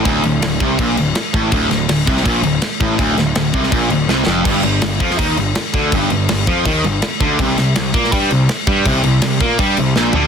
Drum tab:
CC |x-x-x-x-x-x-x-x-|x-x-x-x-x-x-x-x-|x-x-x-x-x-x-----|x-x-x-x-x-x-x-x-|
SD |----o-------o---|--o-o--o----o---|--o-o--o----o-o-|----o--o----o---|
FT |----------------|----------------|----------------|----------------|
BD |o-----o-o-----o-|o-----o-o-----o-|o-----o-o-------|o-----o-o-----o-|

CC |x-x-x-x-x-x-x-x-|x-x-x-x-x-x-x-x-|x-x-x-x-x-x-----|
SD |----o-------o---|--o-o--o----o---|----o-------o---|
FT |----------------|----------------|--------------o-|
BD |o-----o-o-----o-|o-----o-o-----o-|o-----o-o-------|